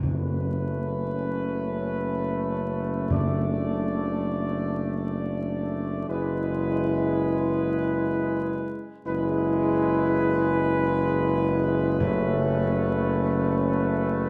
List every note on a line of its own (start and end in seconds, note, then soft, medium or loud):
0.03 0.10 F#2 medium
0.09 6.05 F#1 medium
0.09 6.05 A3 medium
0.09 3.05 C#4 medium
0.09 3.06 B4 medium
3.10 4.18 F#2 loud
3.10 6.05 D4 medium
3.10 6.05 D5 medium
6.07 8.73 F#1 medium
6.07 8.88 G#3 medium
6.07 8.89 E4 medium
6.07 8.88 B4 medium
9.05 14.29 F#1 loud
9.05 11.96 G#3 medium
9.05 11.96 E4 loud
9.05 14.29 B4 medium
12.00 13.06 F#2 loud
12.00 14.29 A3 medium
12.00 14.29 C#4 loud